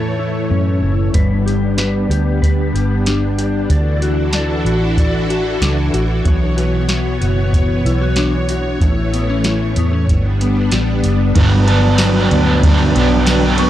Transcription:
0.00 0.47 E2 medium
0.00 1.15 A2 medium
0.00 1.13 E3 medium
0.00 1.13 A3 medium
0.00 0.18 E4 medium
0.00 1.14 A4 medium
0.00 1.11 C#5 medium
0.19 0.81 E4 medium
0.50 0.81 F#2 medium
0.50 1.21 C#4 medium
0.82 1.13 F#1 medium
0.82 1.21 E4 soft
1.14 2.06 G1 medium
1.14 3.70 G3 medium
1.14 3.68 G3 medium
1.14 3.68 B3 medium
1.14 6.22 D4 medium
1.14 1.76 B4 medium
1.14 kick medium
1.14 closed hi-hat medium
1.46 2.09 G4 soft
1.46 closed hi-hat soft
1.77 2.41 B4 medium
1.77 snare loud
1.77 closed hi-hat medium
2.09 2.71 D2 medium
2.09 2.74 G4 medium
2.09 closed hi-hat soft
2.42 3.70 B4 medium
2.42 kick medium
2.42 closed hi-hat medium
2.74 3.66 G1 medium
2.74 3.37 G4 medium
2.74 closed hi-hat soft
3.06 5.61 D4 medium
3.06 snare loud
3.06 closed hi-hat medium
3.39 3.77 G4 soft
3.39 closed hi-hat medium
3.69 4.62 D2 medium
3.69 8.77 E3 medium
3.69 6.23 E4 medium
3.69 6.23 F#4 medium
3.69 6.23 A4 medium
3.69 4.34 D5 medium
3.69 kick medium
3.69 closed hi-hat medium
4.02 4.66 F#4 medium
4.02 closed hi-hat soft
4.33 4.98 D5 medium
4.33 snare loud
4.33 closed hi-hat medium
4.65 5.57 A1 medium
4.65 5.29 F#4 medium
4.65 closed hi-hat soft
4.97 6.25 D5 medium
4.97 kick medium
4.97 closed hi-hat medium
5.30 5.93 F#4 medium
5.30 closed hi-hat soft
5.62 5.92 C#2 medium
5.62 6.91 D4 medium
5.62 snare loud
5.62 closed hi-hat medium
5.93 6.24 A1 medium
5.93 6.56 F#4 soft
5.93 closed hi-hat soft
6.25 7.17 B1 loud
6.25 8.80 B2 medium
6.25 8.78 B3 medium
6.25 6.88 C#5 medium
6.25 10.05 C#5 medium
6.25 kick medium
6.25 closed hi-hat medium
6.57 7.20 F#4 medium
6.57 closed hi-hat soft
6.88 7.52 C#5 medium
6.88 snare medium
6.88 closed hi-hat medium
7.21 7.82 F#1 medium
7.21 7.85 F#4 medium
7.21 closed hi-hat soft
7.53 8.87 C#5 medium
7.53 kick medium
7.53 closed hi-hat medium
7.85 8.77 B1 medium
7.85 8.01 E4 medium
7.85 closed hi-hat soft
8.01 8.49 F#4 soft
8.16 8.87 D4 medium
8.16 snare loud
8.16 closed hi-hat medium
8.49 8.81 F#4 medium
8.49 closed hi-hat medium
8.81 9.73 A1 loud
8.81 10.09 A2 medium
8.81 10.08 E3 medium
8.81 10.08 A3 medium
8.81 9.45 E4 medium
8.81 kick medium
8.81 closed hi-hat medium
9.13 9.30 B3 medium
9.13 closed hi-hat soft
9.30 9.77 C#4 soft
9.44 10.15 E4 medium
9.44 snare loud
9.44 closed hi-hat medium
9.76 10.07 E2 medium
9.76 9.93 B3 medium
9.76 closed hi-hat soft
9.93 10.15 C#4 soft
10.07 10.69 G1 medium
10.07 11.34 G3 medium
10.07 11.34 B3 medium
10.07 11.34 D4 medium
10.07 kick medium
10.07 closed hi-hat medium
10.41 11.04 B3 medium
10.41 closed hi-hat soft
10.71 11.03 A1 medium
10.71 11.99 G3 medium
10.71 snare loud
10.71 closed hi-hat medium
11.04 11.34 F#1 medium
11.04 11.68 B3 medium
11.04 closed hi-hat soft
11.35 12.28 G1 loud
11.35 11.68 G2 medium
11.35 13.70 G2 medium
11.35 11.68 D3 medium
11.35 13.70 F#3 medium
11.35 11.69 F#3 medium
11.35 11.69 B3 medium
11.35 11.66 D4 medium
11.35 13.70 B4 medium
11.35 13.70 D5 medium
11.35 13.70 G5 medium
11.35 kick loud
11.35 ride medium
11.68 12.30 B3 medium
11.68 12.01 B3 medium
11.68 12.00 D4 medium
11.68 13.70 A5 medium
11.68 ride soft
11.72 12.00 F#3 soft
11.98 12.31 D3 medium
11.98 12.63 F#3 medium
11.98 12.33 F#3 medium
11.98 snare loud
11.98 ride medium
11.98 tambourine medium
12.02 12.32 B3 medium
12.02 12.29 D4 medium
12.31 12.92 D2 medium
12.31 12.95 B3 medium
12.31 12.64 B3 medium
12.31 12.63 D4 medium
12.31 ride soft
12.35 12.64 F#3 soft
12.63 12.95 G2 medium
12.63 12.96 D3 medium
12.63 13.27 F#3 medium
12.63 12.96 F#3 medium
12.63 12.96 B3 medium
12.63 12.93 D4 medium
12.63 kick medium
12.63 ride medium
12.94 13.70 B1 medium
12.94 13.58 B3 medium
12.94 13.28 B3 medium
12.94 13.27 D4 medium
12.94 ride soft
12.99 13.27 F#3 soft
13.26 13.59 D3 medium
13.26 13.70 F#3 medium
13.26 13.60 F#3 medium
13.26 13.60 B3 medium
13.26 snare loud
13.26 ride medium
13.26 tambourine medium
13.30 13.58 D4 medium
13.58 13.70 B3 medium
13.58 13.70 D4 medium
13.58 13.70 C#6 medium
13.58 ride soft
13.63 13.70 F#3 soft

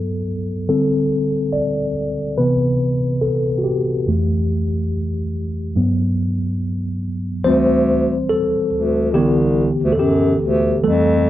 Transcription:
0.00 0.22 G2 medium
0.00 0.23 F#3 soft
0.00 0.23 B3 medium
0.00 0.22 A4 medium
0.69 1.92 D3 soft
0.69 1.92 G3 soft
0.69 1.92 C4 medium
0.69 1.56 A4 medium
1.53 2.40 D5 medium
2.38 4.03 C3 medium
2.38 4.03 E3 soft
2.38 4.04 B3 medium
2.38 3.25 B4 medium
3.22 3.60 A4 medium
3.58 3.65 F#4 medium
3.64 4.87 G4 medium
4.07 4.67 F2 soft
4.07 4.67 E3 soft
4.07 4.68 A3 medium
5.76 7.41 G2 medium
5.76 7.41 F#3 soft
5.76 7.42 B3 medium
7.44 8.17 D2 loud
7.44 8.68 E3 soft
7.44 8.68 G3 soft
7.44 8.69 C4 medium
7.44 8.32 C5 medium
8.29 9.17 A4 medium
8.74 9.17 D2 medium
9.14 9.72 C2 medium
9.14 9.74 D3 medium
9.14 9.74 E3 medium
9.14 9.75 B3 medium
9.14 9.89 G4 medium
9.83 10.01 D2 medium
9.92 9.98 A4 medium
9.99 10.35 F#2 medium
9.99 10.80 G4 medium
10.42 10.77 D2 loud
10.83 11.30 F2 loud
10.83 11.30 E3 soft
10.83 11.30 G3 soft
10.83 11.30 A3 medium
10.83 11.30 A4 medium

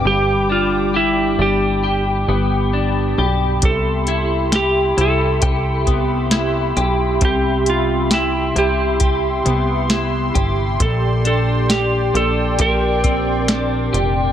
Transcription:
0.00 0.14 C4 medium
0.00 0.49 D4 medium
0.00 0.94 G4 medium
0.00 14.32 G4 medium
0.00 3.59 G5 medium
0.00 10.75 B5 medium
0.00 3.60 D6 medium
0.05 1.35 G1 medium
0.05 3.63 G2 medium
0.05 0.48 G4 medium
0.49 1.38 D4 medium
0.49 0.96 F4 medium
0.94 1.42 E4 medium
0.94 1.83 G4 medium
1.39 2.25 G1 medium
1.39 2.72 D4 soft
1.39 3.16 G4 medium
1.83 3.18 G4 medium
2.28 3.14 G1 medium
2.28 5.79 B3 medium
2.73 3.72 D4 medium
3.18 3.61 B1 medium
3.18 4.52 G4 medium
3.62 4.93 C2 loud
3.62 4.56 A4 medium
3.62 10.76 E5 medium
3.62 14.32 C6 medium
3.62 kick medium
3.62 closed hi-hat medium
4.07 4.96 E4 medium
4.07 closed hi-hat soft
4.52 5.42 G4 medium
4.52 5.00 G4 medium
4.52 snare medium
4.52 closed hi-hat medium
4.97 5.40 C2 medium
4.97 6.30 E4 soft
4.97 6.74 A4 medium
4.97 closed hi-hat soft
5.42 6.73 C2 loud
5.42 6.76 G4 medium
5.42 kick medium
5.42 closed hi-hat medium
5.87 9.44 B3 medium
5.87 kick medium
5.87 closed hi-hat soft
6.31 7.66 E4 medium
6.31 snare loud
6.31 closed hi-hat medium
6.77 7.19 B1 medium
6.77 8.11 G4 medium
6.77 closed hi-hat soft
7.21 8.52 C2 loud
7.21 10.80 C3 medium
7.21 7.69 G4 medium
7.21 kick loud
7.21 closed hi-hat medium
7.66 8.10 F4 medium
7.66 closed hi-hat soft
8.11 8.58 E4 medium
8.11 9.00 G4 medium
8.11 snare medium
8.11 closed hi-hat medium
8.56 9.41 C2 medium
8.56 9.89 E4 medium
8.56 10.32 G4 medium
8.56 closed hi-hat soft
9.00 10.34 G4 medium
9.00 kick medium
9.00 closed hi-hat medium
9.45 10.31 C2 medium
9.45 10.89 B3 medium
9.45 closed hi-hat soft
9.90 10.89 E4 medium
9.90 snare loud
9.90 closed hi-hat medium
10.35 10.78 G1 medium
10.35 11.69 G4 medium
10.35 kick medium
10.35 closed hi-hat soft
10.79 12.10 A#1 medium
10.79 14.32 A#2 medium
10.79 11.26 A4 medium
10.79 14.32 D5 medium
10.79 14.32 G5 medium
10.79 kick loud
10.79 closed hi-hat medium
11.25 12.14 D4 medium
11.25 11.72 A4 medium
11.25 closed hi-hat soft
11.69 12.59 G4 medium
11.69 12.16 G4 medium
11.69 snare medium
11.69 closed hi-hat medium
12.14 12.57 A#1 medium
12.14 13.48 D4 soft
12.14 12.61 A4 medium
12.14 closed hi-hat soft
12.59 13.90 A#1 loud
12.59 13.92 G4 medium
12.59 14.32 A#4 medium
12.59 kick medium
12.59 closed hi-hat medium
13.04 14.32 C4 medium
13.04 kick medium
13.04 closed hi-hat soft
13.48 14.32 D4 soft
13.48 snare loud
13.48 closed hi-hat medium
13.93 14.32 F1 medium
13.93 14.32 G4 medium
13.93 closed hi-hat soft

